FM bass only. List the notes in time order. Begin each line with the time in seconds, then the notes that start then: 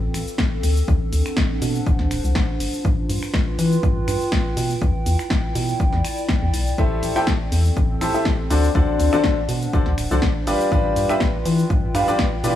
0.14 A1
0.64 D2
0.88 D2
1.13 D2
1.62 B2
1.87 D1
2.00 D2
2.11 D1
2.24 C2
2.60 G1
2.85 G2
3.09 G2
3.59 E3
3.83 G2
4.08 G2
4.57 B2
4.82 E2
5.06 E2
5.55 B2
5.80 E1
5.93 E2
6.42 E2
6.54 B1
6.78 A1
7.03 A1
7.52 E2
7.77 A1
8.01 A1
8.50 D2
8.75 D2
9.00 D2
9.49 B2
9.73 D1
9.87 D2
9.98 D1
10.11 C2
10.47 G1
10.72 G2
10.96 G2
11.46 E3
11.70 G2
11.95 G2
12.44 B2